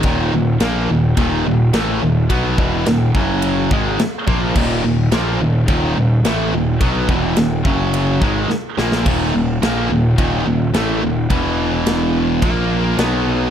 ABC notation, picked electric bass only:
X:1
M:4/4
L:1/8
Q:1/4=107
K:Ebphr
V:1 name="Picked electric bass" clef=bass
E,,, E,,, B,,, E,,, E,,, E,,, =A,,, E,,, | C,, F,,, E,,, G,,,2 A,,, z B,,, | E,,, E,,, B,,, E,,, E,,, E,,, =A,,, E,,, | C,, F,,, E,,, G,,,2 A,,, z B,,, |
E,,, E,,, B,,, E,,, E,,, E,,, =A,,, E,,, | =E,,,4 B,,,2 =B,,,2 |]